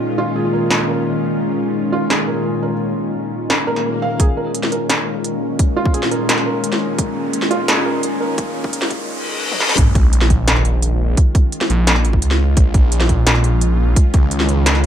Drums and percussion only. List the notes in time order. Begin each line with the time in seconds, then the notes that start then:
0.70 snare
2.10 snare
3.50 snare
3.76 snare
4.20 kick, closed hi-hat
4.55 closed hi-hat
4.63 snare
4.72 closed hi-hat
4.90 snare, closed hi-hat
5.24 closed hi-hat
5.59 kick, closed hi-hat
5.85 kick
5.94 closed hi-hat
6.03 snare
6.11 closed hi-hat
6.29 snare, closed hi-hat
6.38 snare
6.64 closed hi-hat
6.73 snare
6.99 kick, closed hi-hat
7.33 closed hi-hat
7.42 snare
7.51 closed hi-hat
7.68 snare, closed hi-hat
8.03 closed hi-hat
8.38 kick, closed hi-hat
8.64 kick
8.73 closed hi-hat
8.82 snare
8.90 kick, closed hi-hat
9.52 high tom
9.60 snare
9.69 snare
9.78 kick, closed hi-hat
9.95 kick, closed hi-hat
10.13 closed hi-hat
10.21 snare
10.30 kick, closed hi-hat
10.48 snare, closed hi-hat
10.56 snare
10.65 closed hi-hat
10.82 closed hi-hat
11.17 kick, closed hi-hat
11.35 kick, closed hi-hat
11.52 closed hi-hat
11.61 snare
11.70 closed hi-hat
11.87 snare, closed hi-hat
11.96 snare
12.05 closed hi-hat
12.13 kick
12.22 closed hi-hat
12.31 snare
12.57 kick, closed hi-hat
12.74 kick, closed hi-hat
12.92 closed hi-hat
13.01 snare
13.09 kick, closed hi-hat
13.27 snare, closed hi-hat
13.35 snare
13.44 closed hi-hat
13.61 closed hi-hat
13.96 kick, closed hi-hat
14.14 kick, closed hi-hat
14.31 closed hi-hat
14.40 snare
14.49 closed hi-hat
14.66 snare, closed hi-hat
14.75 snare